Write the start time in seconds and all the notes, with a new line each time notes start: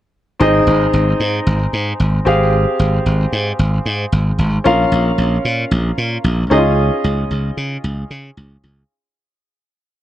0.40 G#1 C4 D#4 G#4 D#5
0.67 G#1
0.93 G#1
1.20 G#2
1.47 G#1
1.73 G#2
2.00 G#1
2.25 G#1 C4 G4 G#4 F5
2.79 G#1
3.06 G#1
3.32 G#2
3.59 G#1
3.86 G#2
4.12 G#1
4.38 G#1
4.64 A#1 C#4 F4 A#4 F5
4.92 A#1
5.18 A#1
5.45 A#2
5.71 A#1
5.98 A#2
6.24 A#1
6.50 C#2 C#4 D#4 G#4 D#5
6.57 F4
7.04 C#2
7.31 C#2
7.57 C#3
7.84 C#2
8.10 C#3
8.37 C#2
8.63 C#2